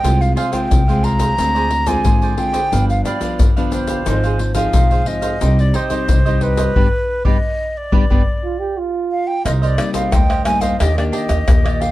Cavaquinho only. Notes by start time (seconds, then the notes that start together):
0.03 F4 G#4 C5 F5
0.21 muted cavaquinho stroke
0.36 F4 G#4 C5 F5
0.52 G#4 C5 F5
0.88 G#4 C5 F5
1.03 F4 G#4 C5 F5
1.19 G#4 C5 F5
1.38 F4 G#4 C5 D5
1.55 G#4 C5 D5
1.70 muted cavaquinho stroke
1.87 G#4 C5 D5
2.04 F4 G#4 C5 D5
2.22 G#4 C5 D5
2.53 G#4 C5 D5
2.71 D4 G4 B4 F5
2.90 muted cavaquinho stroke
3.05 D4 G4 B4 F5
3.21 G4 B4 F5
3.56 G4 B4 F5
3.72 D4 G4 B4 F5
3.88 G4 B4 F5
4.06 D#4 G#4 C5 F5
4.24 G#4 C5 F5
4.39 muted cavaquinho stroke
4.55 G#4 C5 F5
4.73 D#4 G#4 C5 F5
4.90 G#4 C5 F5
5.22 G#4 C5 F5
5.40 D#4 G4 C5 D#5
5.59 muted cavaquinho stroke
5.73 D#4 G4 C5 D#5
5.90 G4 C5 D#5
6.25 G4 C5 D#5
6.41 D#4 G4 C5 D#5
6.58 G4 C5 D#5
6.76 G4 B4 D5
7.25 G4 B4 D5
7.92 G4 B4 D5
8.10 G4 B4 D5
9.45 D#4 A#4 C5 D#5
9.62 A#4 C5 D#5
9.78 muted cavaquinho stroke
9.94 A#4 C5 D#5
10.12 D#4 A#4 C5 D#5
10.30 A#4 C5 D#5
10.61 A#4 C5 D#5
10.79 D4 G4 D5 D#5
10.96 muted cavaquinho stroke
11.12 D4 G4 D5 D#5
11.29 G4 D#5
11.64 G4 D5 D#5
11.80 D4 G4 D5 D#5